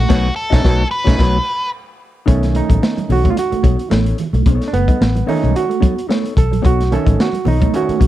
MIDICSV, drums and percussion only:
0, 0, Header, 1, 2, 480
1, 0, Start_track
1, 0, Tempo, 545951
1, 80, Time_signature, 4, 2, 24, 8
1, 7098, End_track
2, 0, Start_track
2, 0, Title_t, "Drums"
2, 85, Note_on_c, 9, 49, 83
2, 86, Note_on_c, 9, 36, 118
2, 90, Note_on_c, 9, 38, 99
2, 173, Note_off_c, 9, 49, 0
2, 174, Note_off_c, 9, 36, 0
2, 177, Note_off_c, 9, 38, 0
2, 461, Note_on_c, 9, 36, 102
2, 462, Note_on_c, 9, 38, 107
2, 549, Note_off_c, 9, 36, 0
2, 550, Note_off_c, 9, 38, 0
2, 567, Note_on_c, 9, 36, 103
2, 571, Note_on_c, 9, 38, 112
2, 655, Note_off_c, 9, 36, 0
2, 659, Note_off_c, 9, 38, 0
2, 941, Note_on_c, 9, 36, 110
2, 946, Note_on_c, 9, 38, 99
2, 1029, Note_off_c, 9, 36, 0
2, 1034, Note_off_c, 9, 38, 0
2, 1043, Note_on_c, 9, 49, 76
2, 1046, Note_on_c, 9, 36, 97
2, 1048, Note_on_c, 9, 38, 93
2, 1131, Note_off_c, 9, 49, 0
2, 1134, Note_off_c, 9, 36, 0
2, 1136, Note_off_c, 9, 38, 0
2, 2002, Note_on_c, 9, 36, 103
2, 2003, Note_on_c, 9, 42, 77
2, 2009, Note_on_c, 9, 62, 39
2, 2090, Note_off_c, 9, 36, 0
2, 2091, Note_off_c, 9, 42, 0
2, 2097, Note_off_c, 9, 62, 0
2, 2136, Note_on_c, 9, 42, 53
2, 2139, Note_on_c, 9, 38, 34
2, 2224, Note_off_c, 9, 42, 0
2, 2227, Note_off_c, 9, 38, 0
2, 2240, Note_on_c, 9, 42, 76
2, 2258, Note_on_c, 9, 62, 33
2, 2328, Note_off_c, 9, 42, 0
2, 2346, Note_off_c, 9, 62, 0
2, 2371, Note_on_c, 9, 36, 95
2, 2378, Note_on_c, 9, 42, 53
2, 2386, Note_on_c, 9, 63, 87
2, 2459, Note_off_c, 9, 36, 0
2, 2465, Note_off_c, 9, 42, 0
2, 2474, Note_off_c, 9, 63, 0
2, 2483, Note_on_c, 9, 62, 38
2, 2490, Note_on_c, 9, 38, 104
2, 2571, Note_off_c, 9, 62, 0
2, 2578, Note_off_c, 9, 38, 0
2, 2618, Note_on_c, 9, 63, 73
2, 2619, Note_on_c, 9, 42, 50
2, 2706, Note_off_c, 9, 63, 0
2, 2707, Note_off_c, 9, 42, 0
2, 2726, Note_on_c, 9, 46, 67
2, 2727, Note_on_c, 9, 64, 85
2, 2814, Note_off_c, 9, 46, 0
2, 2814, Note_off_c, 9, 64, 0
2, 2858, Note_on_c, 9, 36, 97
2, 2858, Note_on_c, 9, 63, 83
2, 2860, Note_on_c, 9, 42, 43
2, 2945, Note_off_c, 9, 36, 0
2, 2946, Note_off_c, 9, 63, 0
2, 2948, Note_off_c, 9, 42, 0
2, 2964, Note_on_c, 9, 42, 92
2, 2967, Note_on_c, 9, 62, 38
2, 3052, Note_off_c, 9, 42, 0
2, 3055, Note_off_c, 9, 62, 0
2, 3097, Note_on_c, 9, 42, 48
2, 3185, Note_off_c, 9, 42, 0
2, 3199, Note_on_c, 9, 36, 82
2, 3202, Note_on_c, 9, 62, 36
2, 3202, Note_on_c, 9, 63, 80
2, 3203, Note_on_c, 9, 42, 70
2, 3286, Note_off_c, 9, 36, 0
2, 3290, Note_off_c, 9, 42, 0
2, 3290, Note_off_c, 9, 62, 0
2, 3290, Note_off_c, 9, 63, 0
2, 3336, Note_on_c, 9, 42, 53
2, 3423, Note_off_c, 9, 42, 0
2, 3440, Note_on_c, 9, 38, 107
2, 3445, Note_on_c, 9, 62, 36
2, 3528, Note_off_c, 9, 38, 0
2, 3533, Note_off_c, 9, 62, 0
2, 3572, Note_on_c, 9, 42, 57
2, 3660, Note_off_c, 9, 42, 0
2, 3677, Note_on_c, 9, 42, 69
2, 3691, Note_on_c, 9, 62, 36
2, 3691, Note_on_c, 9, 64, 75
2, 3765, Note_off_c, 9, 42, 0
2, 3779, Note_off_c, 9, 62, 0
2, 3779, Note_off_c, 9, 64, 0
2, 3817, Note_on_c, 9, 42, 45
2, 3905, Note_off_c, 9, 42, 0
2, 3920, Note_on_c, 9, 36, 100
2, 3920, Note_on_c, 9, 42, 69
2, 3926, Note_on_c, 9, 62, 41
2, 4007, Note_off_c, 9, 42, 0
2, 4008, Note_off_c, 9, 36, 0
2, 4014, Note_off_c, 9, 62, 0
2, 4058, Note_on_c, 9, 42, 53
2, 4061, Note_on_c, 9, 38, 35
2, 4146, Note_off_c, 9, 42, 0
2, 4149, Note_off_c, 9, 38, 0
2, 4164, Note_on_c, 9, 42, 77
2, 4251, Note_off_c, 9, 42, 0
2, 4290, Note_on_c, 9, 36, 86
2, 4296, Note_on_c, 9, 42, 50
2, 4304, Note_on_c, 9, 63, 87
2, 4378, Note_off_c, 9, 36, 0
2, 4384, Note_off_c, 9, 42, 0
2, 4392, Note_off_c, 9, 63, 0
2, 4411, Note_on_c, 9, 38, 112
2, 4499, Note_off_c, 9, 38, 0
2, 4539, Note_on_c, 9, 63, 81
2, 4540, Note_on_c, 9, 42, 54
2, 4627, Note_off_c, 9, 63, 0
2, 4628, Note_off_c, 9, 42, 0
2, 4647, Note_on_c, 9, 62, 44
2, 4647, Note_on_c, 9, 64, 96
2, 4650, Note_on_c, 9, 46, 62
2, 4735, Note_off_c, 9, 62, 0
2, 4735, Note_off_c, 9, 64, 0
2, 4738, Note_off_c, 9, 46, 0
2, 4783, Note_on_c, 9, 63, 74
2, 4787, Note_on_c, 9, 42, 43
2, 4871, Note_off_c, 9, 63, 0
2, 4875, Note_off_c, 9, 42, 0
2, 4884, Note_on_c, 9, 62, 41
2, 4888, Note_on_c, 9, 42, 81
2, 4972, Note_off_c, 9, 62, 0
2, 4976, Note_off_c, 9, 42, 0
2, 5019, Note_on_c, 9, 42, 45
2, 5107, Note_off_c, 9, 42, 0
2, 5121, Note_on_c, 9, 36, 86
2, 5123, Note_on_c, 9, 62, 43
2, 5123, Note_on_c, 9, 63, 93
2, 5126, Note_on_c, 9, 42, 72
2, 5209, Note_off_c, 9, 36, 0
2, 5211, Note_off_c, 9, 62, 0
2, 5211, Note_off_c, 9, 63, 0
2, 5214, Note_off_c, 9, 42, 0
2, 5261, Note_on_c, 9, 42, 56
2, 5349, Note_off_c, 9, 42, 0
2, 5363, Note_on_c, 9, 62, 40
2, 5368, Note_on_c, 9, 38, 103
2, 5451, Note_off_c, 9, 62, 0
2, 5456, Note_off_c, 9, 38, 0
2, 5500, Note_on_c, 9, 42, 53
2, 5587, Note_off_c, 9, 42, 0
2, 5599, Note_on_c, 9, 36, 93
2, 5601, Note_on_c, 9, 64, 70
2, 5606, Note_on_c, 9, 42, 77
2, 5687, Note_off_c, 9, 36, 0
2, 5689, Note_off_c, 9, 64, 0
2, 5694, Note_off_c, 9, 42, 0
2, 5742, Note_on_c, 9, 42, 50
2, 5830, Note_off_c, 9, 42, 0
2, 5835, Note_on_c, 9, 62, 39
2, 5843, Note_on_c, 9, 36, 116
2, 5849, Note_on_c, 9, 42, 78
2, 5923, Note_off_c, 9, 62, 0
2, 5931, Note_off_c, 9, 36, 0
2, 5937, Note_off_c, 9, 42, 0
2, 5983, Note_on_c, 9, 42, 58
2, 5986, Note_on_c, 9, 38, 34
2, 6071, Note_off_c, 9, 42, 0
2, 6074, Note_off_c, 9, 38, 0
2, 6085, Note_on_c, 9, 42, 71
2, 6173, Note_off_c, 9, 42, 0
2, 6212, Note_on_c, 9, 36, 90
2, 6215, Note_on_c, 9, 63, 81
2, 6218, Note_on_c, 9, 42, 52
2, 6300, Note_off_c, 9, 36, 0
2, 6303, Note_off_c, 9, 63, 0
2, 6306, Note_off_c, 9, 42, 0
2, 6331, Note_on_c, 9, 38, 111
2, 6419, Note_off_c, 9, 38, 0
2, 6442, Note_on_c, 9, 63, 69
2, 6457, Note_on_c, 9, 42, 57
2, 6530, Note_off_c, 9, 63, 0
2, 6545, Note_off_c, 9, 42, 0
2, 6552, Note_on_c, 9, 64, 90
2, 6562, Note_on_c, 9, 46, 66
2, 6640, Note_off_c, 9, 64, 0
2, 6650, Note_off_c, 9, 46, 0
2, 6694, Note_on_c, 9, 42, 46
2, 6697, Note_on_c, 9, 36, 98
2, 6698, Note_on_c, 9, 63, 85
2, 6782, Note_off_c, 9, 42, 0
2, 6785, Note_off_c, 9, 36, 0
2, 6786, Note_off_c, 9, 63, 0
2, 6799, Note_on_c, 9, 62, 41
2, 6803, Note_on_c, 9, 42, 86
2, 6887, Note_off_c, 9, 62, 0
2, 6891, Note_off_c, 9, 42, 0
2, 6938, Note_on_c, 9, 42, 48
2, 7026, Note_off_c, 9, 42, 0
2, 7040, Note_on_c, 9, 36, 77
2, 7043, Note_on_c, 9, 63, 88
2, 7047, Note_on_c, 9, 42, 66
2, 7098, Note_off_c, 9, 36, 0
2, 7098, Note_off_c, 9, 42, 0
2, 7098, Note_off_c, 9, 63, 0
2, 7098, End_track
0, 0, End_of_file